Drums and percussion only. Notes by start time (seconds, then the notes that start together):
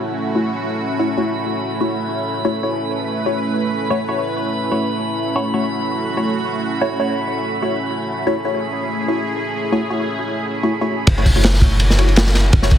11.07 kick, crash, ride
11.18 ride
11.26 kick, open hi-hat
11.37 ride
11.44 snare, ride
11.54 snare
11.62 kick, ride
11.80 ride
11.90 snare
11.99 ride
12.08 ride
12.16 snare, ride
12.27 snare
12.35 snare, ride
12.53 kick, ride
12.62 snare
12.71 kick, ride